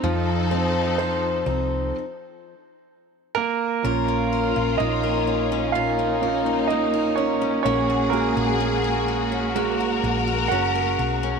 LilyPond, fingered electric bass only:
\new Staff \with { instrumentName = "Fingered electric bass" } { \clef bass \time 4/4 \key f \phrygian \tempo 4 = 63 f,4. c,8 r2 | \key bes \minor bes,,8. bes,,16 bes,,2. | bes,,8. bes,,4.~ bes,,16 bes,,8 ges,,8 ces,8 | }